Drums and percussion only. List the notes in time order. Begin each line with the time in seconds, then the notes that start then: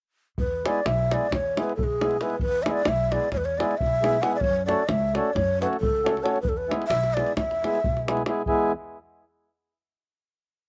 0.38 davul low
0.66 davul high
0.86 davul high
1.11 davul high
1.32 davul high, davul low
1.57 davul high
1.69 davul high
1.79 davul low
2.01 davul high
2.11 davul high
2.21 davul high
2.30 davul high
2.39 davul low
2.66 davul high
2.85 davul high
3.12 davul high
3.32 davul high, davul low
3.60 davul high
3.71 davul high
3.81 davul low
4.04 davul high
4.14 davul high
4.23 davul high
4.33 davul high
4.41 davul low
4.69 davul high
4.89 davul high
5.15 davul high
5.36 davul high, davul low
5.62 davul high
5.73 davul high
5.83 davul low
6.06 davul high
6.17 davul high
6.26 davul high
6.36 davul high
6.45 davul low
6.71 davul high
6.82 davul high
6.90 davul high
7.03 davul high
7.17 davul high
7.26 davul high
7.37 davul high, davul low
7.51 davul high
7.64 davul high
7.75 davul high
7.84 davul low
7.97 davul high
8.08 davul high
8.17 davul high
8.26 davul high
8.46 davul low